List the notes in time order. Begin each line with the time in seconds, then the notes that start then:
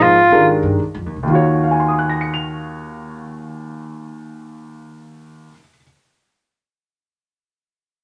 Already playing: F3 A#3 D#4 G#4 C5
0.00 G#1 F4
0.30 G#2 D#3 G#3 D4 G4 A#4
0.63 G2
0.82 muted upright bass stroke
0.95 F2
1.06 D#2
1.16 C2
1.23 D#2 D#3
1.28 D#2 F4
1.32 F#4 C#5
1.64 F5
1.71 G#5
1.80 C6
1.88 D#6
1.99 F#6
2.09 A#6
2.21 C#7
2.34 F7